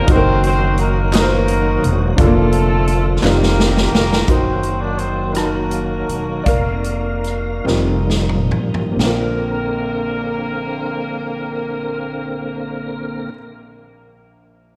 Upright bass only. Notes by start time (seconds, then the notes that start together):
0.08 F#1
1.83 E1
2.18 F1
3.23 F1
3.93 F1
4.28 F#1
6.08 E1
6.46 F1
7.65 F1
8.52 A1
8.96 A#1